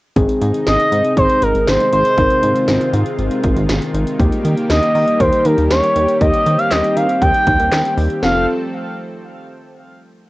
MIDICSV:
0, 0, Header, 1, 6, 480
1, 0, Start_track
1, 0, Tempo, 504202
1, 152, Time_signature, 4, 2, 24, 8
1, 9804, End_track
2, 0, Start_track
2, 0, Title_t, "Analog synth lead"
2, 0, Program_c, 0, 81
2, 637, Note_on_c, 0, 75, 108
2, 1081, Note_off_c, 0, 75, 0
2, 1118, Note_on_c, 0, 72, 100
2, 1359, Note_on_c, 0, 70, 90
2, 1373, Note_off_c, 0, 72, 0
2, 1598, Note_on_c, 0, 72, 95
2, 1612, Note_off_c, 0, 70, 0
2, 1835, Note_off_c, 0, 72, 0
2, 1839, Note_on_c, 0, 72, 97
2, 2758, Note_off_c, 0, 72, 0
2, 4475, Note_on_c, 0, 75, 94
2, 4952, Note_on_c, 0, 72, 96
2, 4966, Note_off_c, 0, 75, 0
2, 5191, Note_on_c, 0, 70, 86
2, 5205, Note_off_c, 0, 72, 0
2, 5422, Note_off_c, 0, 70, 0
2, 5428, Note_on_c, 0, 73, 92
2, 5877, Note_off_c, 0, 73, 0
2, 5906, Note_on_c, 0, 75, 102
2, 6268, Note_on_c, 0, 77, 102
2, 6282, Note_off_c, 0, 75, 0
2, 6386, Note_on_c, 0, 75, 98
2, 6401, Note_off_c, 0, 77, 0
2, 6627, Note_on_c, 0, 77, 100
2, 6642, Note_off_c, 0, 75, 0
2, 6862, Note_off_c, 0, 77, 0
2, 6867, Note_on_c, 0, 79, 109
2, 7552, Note_off_c, 0, 79, 0
2, 7834, Note_on_c, 0, 77, 88
2, 8056, Note_off_c, 0, 77, 0
2, 9804, End_track
3, 0, Start_track
3, 0, Title_t, "Synth keys"
3, 0, Program_c, 1, 88
3, 153, Note_on_c, 1, 60, 77
3, 153, Note_on_c, 1, 68, 86
3, 154, Note_on_c, 1, 63, 69
3, 2035, Note_off_c, 1, 60, 0
3, 2035, Note_off_c, 1, 63, 0
3, 2035, Note_off_c, 1, 68, 0
3, 2072, Note_on_c, 1, 70, 72
3, 2073, Note_on_c, 1, 60, 66
3, 2073, Note_on_c, 1, 63, 59
3, 3954, Note_off_c, 1, 63, 0
3, 3954, Note_off_c, 1, 70, 0
3, 3955, Note_off_c, 1, 60, 0
3, 3991, Note_on_c, 1, 58, 82
3, 3992, Note_on_c, 1, 67, 91
3, 3993, Note_on_c, 1, 63, 74
3, 5874, Note_off_c, 1, 58, 0
3, 5874, Note_off_c, 1, 67, 0
3, 5875, Note_off_c, 1, 63, 0
3, 5911, Note_on_c, 1, 58, 67
3, 5911, Note_on_c, 1, 67, 76
3, 5912, Note_on_c, 1, 63, 62
3, 7794, Note_off_c, 1, 58, 0
3, 7794, Note_off_c, 1, 63, 0
3, 7794, Note_off_c, 1, 67, 0
3, 7831, Note_on_c, 1, 60, 81
3, 7831, Note_on_c, 1, 69, 93
3, 7832, Note_on_c, 1, 65, 76
3, 8055, Note_off_c, 1, 60, 0
3, 8055, Note_off_c, 1, 65, 0
3, 8055, Note_off_c, 1, 69, 0
3, 9804, End_track
4, 0, Start_track
4, 0, Title_t, "Analog synth pad"
4, 0, Program_c, 2, 89
4, 154, Note_on_c, 2, 63, 86
4, 155, Note_on_c, 2, 51, 72
4, 156, Note_on_c, 2, 48, 75
4, 156, Note_on_c, 2, 56, 70
4, 2054, Note_off_c, 2, 63, 0
4, 2072, Note_on_c, 2, 65, 84
4, 3956, Note_off_c, 2, 48, 0
4, 3956, Note_off_c, 2, 56, 0
4, 3973, Note_off_c, 2, 65, 0
4, 3994, Note_on_c, 2, 55, 70
4, 3994, Note_on_c, 2, 58, 71
4, 3996, Note_on_c, 2, 67, 86
4, 5894, Note_off_c, 2, 58, 0
4, 5914, Note_on_c, 2, 60, 72
4, 7795, Note_off_c, 2, 55, 0
4, 7796, Note_off_c, 2, 51, 0
4, 7796, Note_off_c, 2, 67, 0
4, 7814, Note_off_c, 2, 60, 0
4, 7834, Note_on_c, 2, 53, 72
4, 7834, Note_on_c, 2, 57, 65
4, 7834, Note_on_c, 2, 69, 78
4, 7835, Note_on_c, 2, 60, 66
4, 8056, Note_off_c, 2, 57, 0
4, 8056, Note_off_c, 2, 69, 0
4, 8057, Note_off_c, 2, 53, 0
4, 8057, Note_off_c, 2, 60, 0
4, 9804, End_track
5, 0, Start_track
5, 0, Title_t, "Analog synth bass"
5, 0, Program_c, 3, 38
5, 154, Note_on_c, 3, 32, 118
5, 256, Note_off_c, 3, 32, 0
5, 395, Note_on_c, 3, 44, 97
5, 496, Note_off_c, 3, 44, 0
5, 635, Note_on_c, 3, 32, 107
5, 736, Note_off_c, 3, 32, 0
5, 875, Note_on_c, 3, 44, 91
5, 976, Note_off_c, 3, 44, 0
5, 1113, Note_on_c, 3, 32, 94
5, 1215, Note_off_c, 3, 32, 0
5, 1355, Note_on_c, 3, 32, 99
5, 1456, Note_off_c, 3, 32, 0
5, 1476, Note_on_c, 3, 32, 90
5, 1577, Note_off_c, 3, 32, 0
5, 1595, Note_on_c, 3, 32, 95
5, 1696, Note_off_c, 3, 32, 0
5, 1835, Note_on_c, 3, 32, 104
5, 1936, Note_off_c, 3, 32, 0
5, 2073, Note_on_c, 3, 32, 102
5, 2174, Note_off_c, 3, 32, 0
5, 2314, Note_on_c, 3, 44, 89
5, 2415, Note_off_c, 3, 44, 0
5, 2554, Note_on_c, 3, 32, 108
5, 2655, Note_off_c, 3, 32, 0
5, 2792, Note_on_c, 3, 44, 110
5, 2894, Note_off_c, 3, 44, 0
5, 3034, Note_on_c, 3, 32, 101
5, 3135, Note_off_c, 3, 32, 0
5, 3273, Note_on_c, 3, 32, 98
5, 3375, Note_off_c, 3, 32, 0
5, 3392, Note_on_c, 3, 32, 102
5, 3494, Note_off_c, 3, 32, 0
5, 3512, Note_on_c, 3, 32, 104
5, 3614, Note_off_c, 3, 32, 0
5, 3751, Note_on_c, 3, 32, 98
5, 3854, Note_off_c, 3, 32, 0
5, 3994, Note_on_c, 3, 39, 118
5, 4095, Note_off_c, 3, 39, 0
5, 4233, Note_on_c, 3, 51, 97
5, 4335, Note_off_c, 3, 51, 0
5, 4471, Note_on_c, 3, 39, 102
5, 4574, Note_off_c, 3, 39, 0
5, 4711, Note_on_c, 3, 51, 103
5, 4814, Note_off_c, 3, 51, 0
5, 4950, Note_on_c, 3, 39, 101
5, 5053, Note_off_c, 3, 39, 0
5, 5192, Note_on_c, 3, 39, 101
5, 5294, Note_off_c, 3, 39, 0
5, 5311, Note_on_c, 3, 39, 99
5, 5414, Note_off_c, 3, 39, 0
5, 5430, Note_on_c, 3, 39, 101
5, 5533, Note_off_c, 3, 39, 0
5, 5670, Note_on_c, 3, 39, 101
5, 5773, Note_off_c, 3, 39, 0
5, 5912, Note_on_c, 3, 39, 112
5, 6014, Note_off_c, 3, 39, 0
5, 6151, Note_on_c, 3, 51, 95
5, 6254, Note_off_c, 3, 51, 0
5, 6391, Note_on_c, 3, 39, 105
5, 6493, Note_off_c, 3, 39, 0
5, 6632, Note_on_c, 3, 51, 99
5, 6734, Note_off_c, 3, 51, 0
5, 6871, Note_on_c, 3, 39, 102
5, 6973, Note_off_c, 3, 39, 0
5, 7113, Note_on_c, 3, 39, 110
5, 7214, Note_off_c, 3, 39, 0
5, 7230, Note_on_c, 3, 39, 96
5, 7333, Note_off_c, 3, 39, 0
5, 7350, Note_on_c, 3, 39, 100
5, 7453, Note_off_c, 3, 39, 0
5, 7592, Note_on_c, 3, 39, 112
5, 7694, Note_off_c, 3, 39, 0
5, 7832, Note_on_c, 3, 29, 102
5, 8056, Note_off_c, 3, 29, 0
5, 9804, End_track
6, 0, Start_track
6, 0, Title_t, "Drums"
6, 154, Note_on_c, 9, 42, 71
6, 155, Note_on_c, 9, 36, 114
6, 249, Note_off_c, 9, 42, 0
6, 250, Note_off_c, 9, 36, 0
6, 275, Note_on_c, 9, 42, 54
6, 370, Note_off_c, 9, 42, 0
6, 394, Note_on_c, 9, 42, 76
6, 489, Note_off_c, 9, 42, 0
6, 515, Note_on_c, 9, 42, 53
6, 610, Note_off_c, 9, 42, 0
6, 633, Note_on_c, 9, 38, 107
6, 636, Note_on_c, 9, 42, 74
6, 729, Note_off_c, 9, 38, 0
6, 732, Note_off_c, 9, 42, 0
6, 758, Note_on_c, 9, 42, 46
6, 853, Note_off_c, 9, 42, 0
6, 877, Note_on_c, 9, 42, 82
6, 972, Note_off_c, 9, 42, 0
6, 995, Note_on_c, 9, 42, 49
6, 1090, Note_off_c, 9, 42, 0
6, 1113, Note_on_c, 9, 36, 91
6, 1116, Note_on_c, 9, 42, 78
6, 1209, Note_off_c, 9, 36, 0
6, 1211, Note_off_c, 9, 42, 0
6, 1233, Note_on_c, 9, 42, 53
6, 1329, Note_off_c, 9, 42, 0
6, 1352, Note_on_c, 9, 42, 77
6, 1447, Note_off_c, 9, 42, 0
6, 1475, Note_on_c, 9, 42, 45
6, 1570, Note_off_c, 9, 42, 0
6, 1595, Note_on_c, 9, 38, 110
6, 1596, Note_on_c, 9, 42, 75
6, 1690, Note_off_c, 9, 38, 0
6, 1692, Note_off_c, 9, 42, 0
6, 1717, Note_on_c, 9, 42, 53
6, 1812, Note_off_c, 9, 42, 0
6, 1834, Note_on_c, 9, 42, 72
6, 1929, Note_off_c, 9, 42, 0
6, 1952, Note_on_c, 9, 42, 56
6, 2048, Note_off_c, 9, 42, 0
6, 2073, Note_on_c, 9, 36, 118
6, 2073, Note_on_c, 9, 42, 73
6, 2168, Note_off_c, 9, 42, 0
6, 2169, Note_off_c, 9, 36, 0
6, 2193, Note_on_c, 9, 42, 56
6, 2288, Note_off_c, 9, 42, 0
6, 2313, Note_on_c, 9, 42, 80
6, 2409, Note_off_c, 9, 42, 0
6, 2434, Note_on_c, 9, 42, 55
6, 2529, Note_off_c, 9, 42, 0
6, 2551, Note_on_c, 9, 38, 106
6, 2554, Note_on_c, 9, 42, 78
6, 2646, Note_off_c, 9, 38, 0
6, 2649, Note_off_c, 9, 42, 0
6, 2676, Note_on_c, 9, 42, 48
6, 2771, Note_off_c, 9, 42, 0
6, 2795, Note_on_c, 9, 42, 83
6, 2890, Note_off_c, 9, 42, 0
6, 2913, Note_on_c, 9, 42, 49
6, 3008, Note_off_c, 9, 42, 0
6, 3034, Note_on_c, 9, 42, 78
6, 3130, Note_off_c, 9, 42, 0
6, 3152, Note_on_c, 9, 42, 56
6, 3247, Note_off_c, 9, 42, 0
6, 3271, Note_on_c, 9, 42, 80
6, 3274, Note_on_c, 9, 36, 94
6, 3367, Note_off_c, 9, 42, 0
6, 3369, Note_off_c, 9, 36, 0
6, 3395, Note_on_c, 9, 42, 46
6, 3490, Note_off_c, 9, 42, 0
6, 3514, Note_on_c, 9, 38, 112
6, 3516, Note_on_c, 9, 42, 78
6, 3609, Note_off_c, 9, 38, 0
6, 3611, Note_off_c, 9, 42, 0
6, 3637, Note_on_c, 9, 42, 52
6, 3732, Note_off_c, 9, 42, 0
6, 3756, Note_on_c, 9, 42, 70
6, 3851, Note_off_c, 9, 42, 0
6, 3875, Note_on_c, 9, 42, 55
6, 3970, Note_off_c, 9, 42, 0
6, 3994, Note_on_c, 9, 36, 116
6, 3995, Note_on_c, 9, 42, 75
6, 4089, Note_off_c, 9, 36, 0
6, 4090, Note_off_c, 9, 42, 0
6, 4115, Note_on_c, 9, 42, 55
6, 4211, Note_off_c, 9, 42, 0
6, 4234, Note_on_c, 9, 42, 77
6, 4329, Note_off_c, 9, 42, 0
6, 4354, Note_on_c, 9, 42, 54
6, 4449, Note_off_c, 9, 42, 0
6, 4472, Note_on_c, 9, 38, 108
6, 4475, Note_on_c, 9, 42, 78
6, 4567, Note_off_c, 9, 38, 0
6, 4570, Note_off_c, 9, 42, 0
6, 4596, Note_on_c, 9, 42, 45
6, 4691, Note_off_c, 9, 42, 0
6, 4713, Note_on_c, 9, 46, 59
6, 4808, Note_off_c, 9, 46, 0
6, 4832, Note_on_c, 9, 42, 52
6, 4927, Note_off_c, 9, 42, 0
6, 4951, Note_on_c, 9, 36, 95
6, 4952, Note_on_c, 9, 42, 78
6, 5046, Note_off_c, 9, 36, 0
6, 5047, Note_off_c, 9, 42, 0
6, 5070, Note_on_c, 9, 42, 53
6, 5165, Note_off_c, 9, 42, 0
6, 5188, Note_on_c, 9, 42, 80
6, 5283, Note_off_c, 9, 42, 0
6, 5311, Note_on_c, 9, 42, 45
6, 5406, Note_off_c, 9, 42, 0
6, 5431, Note_on_c, 9, 38, 113
6, 5433, Note_on_c, 9, 42, 79
6, 5527, Note_off_c, 9, 38, 0
6, 5528, Note_off_c, 9, 42, 0
6, 5555, Note_on_c, 9, 42, 52
6, 5650, Note_off_c, 9, 42, 0
6, 5672, Note_on_c, 9, 42, 71
6, 5767, Note_off_c, 9, 42, 0
6, 5792, Note_on_c, 9, 42, 55
6, 5887, Note_off_c, 9, 42, 0
6, 5911, Note_on_c, 9, 42, 72
6, 5912, Note_on_c, 9, 36, 115
6, 6006, Note_off_c, 9, 42, 0
6, 6007, Note_off_c, 9, 36, 0
6, 6031, Note_on_c, 9, 42, 58
6, 6126, Note_off_c, 9, 42, 0
6, 6152, Note_on_c, 9, 42, 82
6, 6247, Note_off_c, 9, 42, 0
6, 6273, Note_on_c, 9, 42, 55
6, 6368, Note_off_c, 9, 42, 0
6, 6389, Note_on_c, 9, 38, 109
6, 6389, Note_on_c, 9, 39, 89
6, 6392, Note_on_c, 9, 42, 80
6, 6484, Note_off_c, 9, 38, 0
6, 6484, Note_off_c, 9, 39, 0
6, 6487, Note_off_c, 9, 42, 0
6, 6514, Note_on_c, 9, 42, 47
6, 6609, Note_off_c, 9, 42, 0
6, 6633, Note_on_c, 9, 42, 82
6, 6728, Note_off_c, 9, 42, 0
6, 6752, Note_on_c, 9, 42, 51
6, 6847, Note_off_c, 9, 42, 0
6, 6871, Note_on_c, 9, 36, 98
6, 6873, Note_on_c, 9, 42, 79
6, 6966, Note_off_c, 9, 36, 0
6, 6968, Note_off_c, 9, 42, 0
6, 6991, Note_on_c, 9, 42, 54
6, 7087, Note_off_c, 9, 42, 0
6, 7110, Note_on_c, 9, 42, 80
6, 7112, Note_on_c, 9, 36, 97
6, 7205, Note_off_c, 9, 42, 0
6, 7207, Note_off_c, 9, 36, 0
6, 7233, Note_on_c, 9, 42, 47
6, 7328, Note_off_c, 9, 42, 0
6, 7352, Note_on_c, 9, 38, 115
6, 7352, Note_on_c, 9, 39, 94
6, 7353, Note_on_c, 9, 42, 78
6, 7447, Note_off_c, 9, 38, 0
6, 7447, Note_off_c, 9, 39, 0
6, 7449, Note_off_c, 9, 42, 0
6, 7477, Note_on_c, 9, 42, 53
6, 7572, Note_off_c, 9, 42, 0
6, 7594, Note_on_c, 9, 46, 74
6, 7689, Note_off_c, 9, 46, 0
6, 7712, Note_on_c, 9, 42, 57
6, 7807, Note_off_c, 9, 42, 0
6, 7833, Note_on_c, 9, 38, 107
6, 7928, Note_off_c, 9, 38, 0
6, 9804, End_track
0, 0, End_of_file